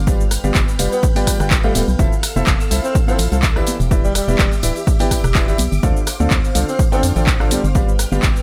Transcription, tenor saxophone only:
0.92 1.04 B3 medium
1.64 1.71 A3 medium
1.75 1.83 A3 medium
2.84 2.96 C4 medium
3.08 3.20 C4 medium
4.04 4.13 G3 medium
4.15 4.52 G3 medium
6.68 6.80 C4 medium
6.92 7.04 C4 loud
7.51 7.65 G3 medium

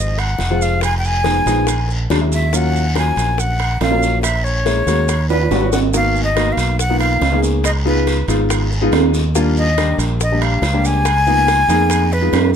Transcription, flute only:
0.00 0.20 D#5 medium
0.19 0.64 F#5 medium
0.62 0.83 F5 loud
0.84 0.96 G#5 medium
0.98 1.07 G5 medium
1.06 1.90 G#5 loud
2.34 2.57 E5 medium
2.55 2.97 F#5 medium
2.98 3.41 G#5 medium
3.40 3.82 F#5 medium
3.82 4.21 F5 medium
4.22 4.46 E5 medium
4.44 5.29 C#5 medium
5.29 5.69 B4 medium
5.73 5.79 F#5 loud
5.96 6.21 F5 loud
6.24 6.54 D#5 medium
6.52 6.79 F5 medium
6.80 6.99 F#5 loud
7.00 7.40 F5 medium
7.65 7.71 D#5 medium
7.87 8.26 B4 medium
9.58 9.97 D#5 medium
10.23 10.44 D#5 medium
10.43 10.88 F5 medium
10.86 12.14 G#5 loud
12.13 12.53 B4 medium

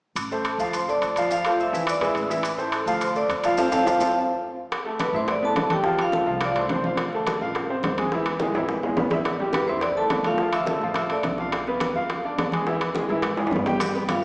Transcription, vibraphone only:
0.47 0.72 A4 medium
0.47 0.72 A5 medium
0.75 0.81 C5 medium
0.75 0.81 C6 medium
0.89 1.29 D5 medium
0.89 1.28 D6 medium
1.32 1.58 F4 medium
1.32 1.58 F5 loud
1.60 1.86 E5 medium
1.60 1.86 E6 medium
1.89 2.02 D5 medium
1.89 2.01 D6 medium
2.04 2.29 E5 medium
2.04 2.29 E6 medium
2.74 3.03 A4 medium
2.74 3.00 A5 medium
3.03 3.09 C5 medium
3.03 3.09 C6 medium
3.17 3.46 D5 medium
3.17 3.43 D6 medium
3.45 3.57 F4 medium
3.45 3.57 F5 medium
3.58 3.67 C5 medium
3.58 3.67 F5 medium
3.58 3.68 A5 medium
3.72 3.81 C5 medium
3.72 3.81 F5 medium
3.72 3.81 A5 medium
3.87 3.95 C5 medium
3.87 3.95 F5 medium
3.87 3.96 A5 medium
4.01 4.10 C5 medium
4.01 4.10 F5 medium
4.01 4.10 A5 medium
5.00 5.07 B4 medium
5.00 5.07 B5 medium
5.16 5.28 C5 medium
5.16 5.28 C6 medium
5.30 5.43 D5 medium
5.30 5.42 D6 medium
5.44 5.70 A4 medium
5.44 5.70 A5 loud
5.72 5.98 G4 medium
5.72 5.98 G5 medium
6.00 6.39 F4 medium
6.00 6.44 F5 medium
6.44 6.50 D5 medium
6.44 6.50 D6 medium
6.56 6.83 C5 medium
6.56 6.83 C6 medium
9.54 9.68 B4 medium
9.54 9.67 B5 medium
9.68 9.81 C5 medium
9.68 9.81 C6 medium
9.82 9.97 D5 medium
9.82 9.96 D6 medium
9.97 10.23 A4 medium
9.97 10.23 A5 loud
10.27 10.52 F4 medium
10.27 10.55 F5 medium
10.54 10.97 E5 medium
10.54 10.94 E6 medium
10.97 11.04 E5 medium
10.97 11.03 E6 medium
11.11 11.37 D5 medium
11.11 11.37 D6 medium
14.10 14.16 F4 medium
14.10 14.16 F5 medium

